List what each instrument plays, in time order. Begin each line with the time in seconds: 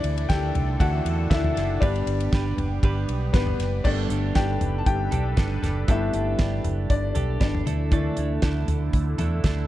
Already playing: clean electric guitar D3 E3 A3 D4 E4 A4, analog synth pad D3 D4 E4 A4, upright piano E3 A3 D4 D5
0.04 fingered electric bass D2, ride
0.17 ride
0.29 fingered electric bass D2, clean electric guitar A3 D4 E4 A4, upright piano G4 G5, kick, snare, ride
0.55 fingered electric bass C2, floor tom, ride
0.80 fingered electric bass D2, clean electric guitar D3 E3 A3 D4 E4 A4, upright piano F#4 F#5, kick, ride
1.05 fingered electric bass E2, ride
1.30 fingered electric bass D2, clean electric guitar A3 D4 E4 A4, upright piano E4 E5, kick, snare, ride
1.44 floor tom
1.56 fingered electric bass F#1, clean electric guitar A3 D4 E4 A4, snare, ride
1.81 fingered electric bass G1, upright piano G3 B3 D4 D5, clean electric guitar G3 D4 G4 B4, analog synth pad B3 G4, kick, ride
1.96 ride
2.06 fingered electric bass G1, ride
2.20 ride
2.32 fingered electric bass G1, clean electric guitar G3 D4 G4 B4, kick, snare, ride
2.57 fingered electric bass F#1, floor tom, ride
2.83 fingered electric bass G1, clean electric guitar G3 D4 G4 B4, kick, ride
3.08 fingered electric bass B1, ride
3.33 fingered electric bass G1, clean electric guitar G3 D4 G4 B4, upright piano B3 B4, kick, snare, ride
3.47 floor tom
3.59 fingered electric bass F#1, snare, ride
3.84 fingered electric bass G1, clean electric guitar G3 B3 D4 G4 A4, upright piano G3 A3 B3 D4 D5, analog synth pad G3 D4 A4 B4, kick, crash
4.10 fingered electric bass G1, clean electric guitar D4 G4 A4, closed hi-hat
4.35 fingered electric bass G1, clean electric guitar B3 D4 G4 A4, upright piano G4 G5, kick, snare, closed hi-hat
4.61 fingered electric bass F#1, closed hi-hat, floor tom
4.78 upright piano A5
4.86 fingered electric bass G1, upright piano G4 G5, kick, closed hi-hat
5.11 fingered electric bass B1, clean electric guitar D4 G4 A4, closed hi-hat, floor tom
5.37 fingered electric bass G1, clean electric guitar B3 D4 G4 A4, kick, snare, closed hi-hat
5.63 fingered electric bass F#1, clean electric guitar D4 G4 A4, snare, closed hi-hat, floor tom
5.88 fingered electric bass G1, clean electric guitar G3 B3 D4 G4 A4, upright piano G3 A3 B3 E4 E5, kick, closed hi-hat
6.13 fingered electric bass G1, clean electric guitar D4 G4 A4, closed hi-hat
6.38 fingered electric bass G1, clean electric guitar B3 D4 G4 A4, kick, snare, closed hi-hat
6.64 fingered electric bass F#1, closed hi-hat, floor tom
6.90 fingered electric bass G1, upright piano D4 D5, kick, closed hi-hat
7.15 fingered electric bass B1, clean electric guitar D4 G4 A4, closed hi-hat, floor tom
7.40 fingered electric bass G1, clean electric guitar B3 D4 G4 A4, upright piano D4 D5, kick, snare, closed hi-hat
7.55 floor tom
7.66 fingered electric bass D2, analog synth pad D3 E4, clean electric guitar A3 D4 E4 A4, closed hi-hat, floor tom
7.91 clean electric guitar D3 E3 A3 D4 E4 A4, upright piano E3 A3 D4, kick, closed hi-hat
8.16 fingered electric bass D2, clean electric guitar A3 D4 E4 A4, closed hi-hat
8.42 fingered electric bass D2, clean electric guitar A3 D4 E4 A4, kick, snare, closed hi-hat
8.68 fingered electric bass D2, closed hi-hat, floor tom
8.93 fingered electric bass D2, kick, closed hi-hat
9.18 fingered electric bass E2, clean electric guitar A3 D4 E4 A4, closed hi-hat, floor tom
9.44 fingered electric bass D2, clean electric guitar A3 D4 E4 A4, kick, snare, closed hi-hat